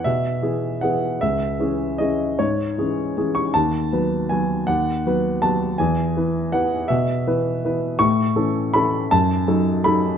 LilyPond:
<<
  \new Staff \with { instrumentName = "Grand piano" } { \time 3/4 \key e \major \tempo 4 = 159 e''2 fis''4 | e''2 dis''4 | cis''2 r8 cis'''8 | a''2 gis''4 |
fis''2 a''4 | gis''2 fis''4 | e''2 r4 | \key a \lydian cis'''2 b''4 |
a''2 b''4 | }
  \new Staff \with { instrumentName = "Grand piano" } { \time 3/4 \key e \major b,4 <e b gis'>4 <e b gis'>4 | cis,4 <e cis' gis'>4 <e cis' gis'>4 | gis,4 <e cis' gis'>4 <e cis' gis'>4 | dis,4 <fis b b'>4 <fis b b'>4 |
dis,4 <fis b b'>4 <fis b b'>4 | e,4 <e b b'>4 <e b b'>4 | b,4 <e b b'>4 <e b b'>4 | \key a \lydian a,4 <e cis' a'>4 <e cis' a'>4 |
fis,4 <fis dis' a'>4 <fis dis' a'>4 | }
>>